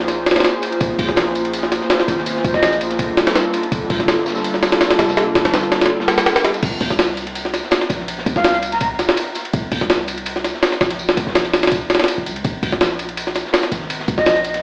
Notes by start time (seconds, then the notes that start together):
Already playing: A#1 A#3 C#4 F4 G#4 C5
0.00 snare
0.08 snare, ride, tambourine
0.26 snare, ride, tambourine
0.31 snare, ride
0.36 A#3 C#4 F4 G#4 C5, snare, ride
0.40 snare, ride
0.44 snare, ride, tambourine
0.62 A#3 C#4 F4 G#4 C5, snare, ride, tambourine
0.72 ride
0.80 A#1 A#3 C#4 F4 G#4 C5, kick, ride, tambourine
0.99 C#2, kick, open hi-hat, ride
1.08 A#1, snare, closed hi-hat
1.16 snare, ride, tambourine
1.35 A#3 C#4 F4 G#4 C5, ride, tambourine
1.45 ride
1.53 ride, tambourine
1.63 snare
1.72 A#3 C#4 F4 G#4 C5, snare, ride, tambourine
1.81 snare
1.90 snare, ride, tambourine
2.00 snare, closed hi-hat
2.08 G#1, snare, ride, tambourine
2.18 snare
2.26 A#3 C#4 F4 G#4 C5, ride, tambourine
2.36 snare
2.44 C#2, kick, ride, tambourine
2.54 A#1 D#5, snare
2.62 snare, ride, tambourine
2.72 closed hi-hat
2.81 G3 A#3 D4 F4 A4, ride, tambourine
2.90 snare, ride
2.99 G1, kick, ride, tambourine
3.17 snare, ride, tambourine
3.27 G3 A#3 D4 F4 A4, snare, ride
3.35 snare, ride, tambourine
3.53 G3 A#3 D4 F4 A4, snare, ride, tambourine
3.63 ride
3.72 G1 G3 A#3 D4 F4 A4, kick, ride, tambourine
3.90 A#1, kick, open hi-hat, ride
3.99 G1, snare, closed hi-hat
4.08 snare, ride, tambourine
4.26 G3 A#3 D4 F4 A4, snare, tambourine
4.35 snare, tambourine
4.44 ride, tambourine
4.54 snare
4.63 G3 A#3 D4 F4 A4, snare, ride, tambourine
4.72 snare, ride
4.81 snare, ride, tambourine
4.91 snare, closed hi-hat, ride
4.99 F1, snare, ride, tambourine
5.08 snare, tambourine
5.17 G3 A#3 D4 F4 A4, snare, ride, tambourine
5.35 A#1, snare, ride, tambourine
5.45 G1, snare, ride
5.54 snare, ride, tambourine
5.63 closed hi-hat
5.72 G3 A#3 D4 F4 A4, snare, ride
5.81 snare, ride, tambourine
5.86 snare, ride
6.00 snare
6.08 snare, ride, tambourine
6.18 snare, ride, tambourine
6.26 snare, ride, tambourine
6.36 snare, ride, tambourine
6.45 snare, closed hi-hat, ride
6.54 snare, ride, tambourine
6.63 C2, kick, crash, ride, tambourine
6.81 D#2, kick, open hi-hat, ride
6.90 C2, snare, closed hi-hat
6.99 snare, ride, tambourine
7.17 ride, tambourine
7.27 ride
7.35 ride, tambourine
7.45 snare
7.54 snare, ride, tambourine
7.63 snare
7.71 snare, ride, tambourine
7.81 snare, closed hi-hat
7.90 A#1, snare, ride, tambourine
7.99 snare
8.08 ride, tambourine
8.18 snare
8.26 D#2, kick, ride, tambourine
8.36 C2 F5, snare
8.44 snare, ride, tambourine
8.54 closed hi-hat
8.62 ride, tambourine
8.72 A#5, snare, ride
8.80 A#5, kick, ride, tambourine
8.99 snare, ride, tambourine
9.08 snare
9.17 ride, tambourine
9.35 snare, ride, tambourine
9.45 ride
9.53 C2, kick, ride, tambourine
9.72 D#2, kick, open hi-hat, ride
9.81 C2, snare, closed hi-hat
9.90 snare, ride, tambourine
10.08 ride, tambourine
10.18 ride
10.26 ride, tambourine
10.36 snare
10.44 snare, ride, tambourine
10.54 snare
10.63 snare, ride, tambourine
10.72 snare, closed hi-hat
10.81 A#1, snare, tambourine
10.90 snare, ride
10.99 tambourine
11.09 snare
11.17 C#2, ride, tambourine
11.27 A#1, snare
11.35 snare, ride, tambourine
11.45 closed hi-hat
11.53 snare, ride, tambourine
11.63 snare, ride
11.67 snare, ride
11.72 kick, ride, tambourine
11.90 snare, ride, tambourine
11.95 snare, ride
11.99 snare, ride
12.04 snare, ride
12.08 ride, tambourine
12.18 F1
12.26 C#2, ride, tambourine
12.36 ride
12.44 A#1, kick, ride, tambourine
12.63 C#2, kick, open hi-hat, ride
12.72 A#1, snare, closed hi-hat
12.81 snare, ride, tambourine
12.99 ride, tambourine
13.09 ride
13.17 ride, tambourine
13.27 snare
13.35 snare, ride, tambourine
13.45 snare
13.53 snare, ride, tambourine
13.63 snare, closed hi-hat
13.71 G#1, snare, ride, tambourine
13.81 snare
13.90 ride, tambourine
14.00 snare
14.08 C#2, kick, ride, tambourine
14.18 A#1 D#5, snare
14.26 snare, ride, tambourine
14.36 closed hi-hat
14.44 ride, tambourine
14.54 snare, ride